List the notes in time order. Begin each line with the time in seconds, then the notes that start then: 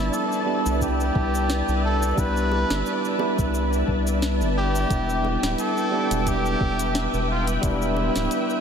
Already playing: G1 G3 B3 D4 E4 B4 D5 E5 A5
0.13 A4, shaker
0.32 shaker
0.46 G3 B3 D4 E4
0.66 C2, shaker
0.81 G4, kick, shaker
1.00 shaker
1.15 C2, kick
1.35 shaker
1.50 snare, shaker
1.68 C2, shaker
1.85 A4
2.03 shaker
2.16 C2 G3 B3 D4 E4 B4, kick, shaker
2.37 shaker
2.52 high bongo
2.70 G1, snare, shaker
2.86 shaker
3.05 shaker
3.18 G3 B3 D4 E4, high bongo
3.38 C2, kick, shaker
3.54 shaker
3.73 shaker
3.88 C2, kick
4.07 shaker
4.22 snare, shaker
4.41 G1, shaker
4.58 G4
4.75 shaker
4.89 E1 G3 B3 D4 E4 B4 G5 D6, kick, closed hi-hat, shaker
5.09 shaker
5.25 high bongo
5.43 D1, snare, closed hi-hat, shaker
5.58 A4, closed hi-hat, shaker
5.77 shaker
5.91 G3 B3 D4 E4
6.11 E1, closed hi-hat, shaker
6.27 G4, kick, closed hi-hat, shaker
6.46 shaker
6.61 E1, kick
6.79 closed hi-hat, shaker
6.95 snare, closed hi-hat, shaker
7.13 E1, shaker
7.31 F4
7.47 closed hi-hat, shaker
7.61 E1 G3 B3 D4 E4 E6, kick, closed hi-hat, shaker
7.82 shaker
7.97 high bongo
8.16 D1, snare, closed hi-hat, shaker
8.31 closed hi-hat, shaker
8.50 shaker